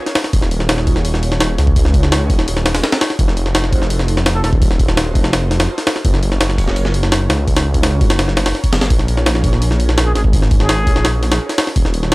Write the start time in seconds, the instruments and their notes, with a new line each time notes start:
0.06 snare, open hi-hat
0.15 snare, open hi-hat
0.24 snare
0.33 detuned saw bass D#1, analog synth pad D#4 F4 F#4 G#4 C#5, kick, open hi-hat
0.42 snare
0.51 open hi-hat
0.60 snare
0.69 snare, open hi-hat
0.78 snare
0.87 kick, open hi-hat
0.96 snare
1.05 open hi-hat
1.14 snare
1.23 open hi-hat
1.32 snare
1.40 snare, open hi-hat
1.58 detuned saw bass C#2, snare, open hi-hat
1.67 kick
1.76 analog synth pad D#4 F4 F#4 G#4 C#5, kick, open hi-hat
1.85 snare
1.94 kick, open hi-hat
2.03 snare
2.12 snare, open hi-hat
2.30 detuned saw bass D#1, kick, open hi-hat
2.39 snare
2.48 open hi-hat
2.57 snare
2.66 snare, open hi-hat
2.75 snare, open hi-hat
2.84 snare, open hi-hat
2.92 snare, open hi-hat
3.01 snare, open hi-hat
3.10 snare
3.19 detuned saw bass F1, analog synth pad D#4 F4 F#4 A4 C5, kick, open hi-hat
3.28 snare
3.37 open hi-hat
3.46 snare
3.55 snare, open hi-hat
3.64 snare
3.73 kick, open hi-hat
3.82 snare
3.90 open hi-hat
3.99 snare
4.08 open hi-hat
4.17 snare
4.26 snare, open hi-hat
4.35 muted trumpet A4
4.44 detuned saw bass D#1, muted trumpet A4, snare, open hi-hat
4.53 kick
4.62 analog synth pad D#4 F4 F#4 A4 C5, kick, open hi-hat
4.71 snare
4.80 kick, open hi-hat
4.88 snare
4.97 snare, open hi-hat
5.15 detuned saw bass F1, kick, open hi-hat
5.24 snare
5.33 snare, open hi-hat
5.51 snare, open hi-hat
5.60 snare, open hi-hat
5.78 snare, open hi-hat
5.87 snare, open hi-hat
5.96 snare
6.05 detuned saw bass F#1, analog synth pad C#4 F4 F#4 A#4 C#5, kick, open hi-hat
6.14 snare
6.23 open hi-hat
6.32 snare
6.40 snare, open hi-hat
6.50 snare
6.58 kick, open hi-hat
6.67 snare
6.76 open hi-hat
6.85 snare
6.94 open hi-hat
7.03 snare
7.12 snare, open hi-hat
7.29 detuned saw bass C#2, snare, open hi-hat
7.47 analog synth pad C#4 F4 F#4 A#4 C#5, kick, open hi-hat
7.56 snare, open hi-hat
7.74 kick, open hi-hat
7.83 snare, open hi-hat
8.01 detuned saw bass F#1, kick, open hi-hat
8.10 snare, open hi-hat
8.19 snare, open hi-hat
8.28 snare
8.37 snare, open hi-hat
8.46 snare, open hi-hat
8.55 snare
8.64 kick, open hi-hat
8.72 detuned saw bass F#1, snare, open hi-hat
8.81 detuned saw bass F#1, snare, open hi-hat
8.90 detuned saw bass A#1, analog synth pad C#4 F4 G#4 A#4 C#5, kick, open hi-hat
8.99 snare
9.08 open hi-hat
9.17 snare
9.26 snare, open hi-hat
9.35 snare
9.44 kick, open hi-hat
9.53 snare
9.62 open hi-hat
9.71 snare
9.80 open hi-hat
9.89 snare
9.98 snare, open hi-hat
10.06 muted trumpet G#4
10.15 detuned saw bass G#1, muted trumpet G#4, snare, open hi-hat
10.24 kick
10.33 analog synth pad C#4 F4 G#4 A#4 C#5, kick, open hi-hat
10.42 snare
10.51 kick, open hi-hat
10.60 muted trumpet G#4, snare
10.69 snare, open hi-hat
10.87 detuned saw bass A#1, kick, open hi-hat
10.96 snare
11.05 snare, open hi-hat
11.23 snare, open hi-hat
11.32 snare, open hi-hat
11.49 snare, open hi-hat
11.58 snare, open hi-hat
11.67 snare
11.76 detuned saw bass D#1, analog synth pad D#4 F4 F#4 G#4 C#5, kick, open hi-hat
11.85 snare
11.94 open hi-hat
12.03 snare